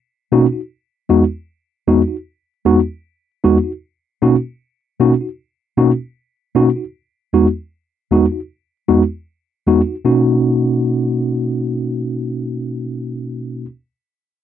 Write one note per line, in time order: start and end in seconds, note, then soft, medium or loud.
0.32 0.45 B2 medium
0.32 0.45 A#3 medium
0.32 0.45 C#4 medium
0.32 0.45 D#4 medium
0.32 0.45 F#4 medium
0.52 0.60 D#4 soft
0.52 0.60 F#4 soft
1.09 1.23 E2 medium
1.09 1.23 G#3 medium
1.09 1.23 B3 medium
1.09 1.23 D#4 medium
1.09 1.23 F#4 loud
1.87 2.01 E2 medium
1.87 2.01 G#3 medium
1.87 2.01 B3 medium
1.87 2.01 D#4 medium
1.87 2.01 F#4 medium
2.08 2.15 D#4 soft
2.08 2.16 F#4 soft
2.65 2.79 E2 medium
2.65 2.79 G#3 medium
2.65 2.79 B3 medium
2.65 2.79 D#4 medium
2.65 2.79 F#4 loud
3.44 3.57 E2 medium
3.44 3.57 G#3 medium
3.44 3.57 B3 medium
3.44 3.57 D#4 medium
3.44 3.57 F#4 loud
4.22 4.35 B2 medium
4.22 4.35 A#3 medium
4.22 4.35 C#4 medium
4.22 4.35 D#4 medium
4.22 4.35 F#4 medium
5.00 5.13 B2 medium
5.00 5.13 A#3 medium
5.00 5.13 C#4 medium
5.00 5.13 D#4 medium
5.00 5.13 F#4 loud
5.21 5.28 D#4 soft
5.21 5.28 F#4 soft
5.78 5.90 B2 medium
5.78 5.90 A#3 medium
5.78 5.90 C#4 medium
5.78 5.90 D#4 medium
5.78 5.91 F#4 loud
6.55 6.68 B2 medium
6.55 6.68 A#3 medium
6.55 6.68 C#4 medium
6.55 6.68 D#4 medium
6.55 6.69 F#4 loud
6.76 6.83 D#4 soft
6.76 6.83 F#4 soft
7.33 7.46 E2 medium
7.33 7.46 G#3 medium
7.33 7.46 B3 medium
7.33 7.46 D#4 medium
7.33 7.47 F#4 medium
8.11 8.24 E2 medium
8.11 8.24 G#3 medium
8.11 8.24 B3 medium
8.11 8.25 D#4 medium
8.11 8.25 F#4 loud
8.32 8.39 D#4 soft
8.32 8.39 F#4 soft
8.88 9.02 E2 medium
8.88 9.02 G#3 medium
8.88 9.02 B3 medium
8.88 9.02 D#4 medium
8.88 9.02 F#4 loud
9.67 9.80 E2 medium
9.67 9.80 G#3 medium
9.67 9.80 B3 medium
9.67 9.80 D#4 medium
9.67 9.80 F#4 medium
10.05 13.65 B2 medium
10.05 13.65 A#3 medium
10.05 13.65 C#4 medium
10.05 13.65 D#4 medium
10.05 13.65 F#4 medium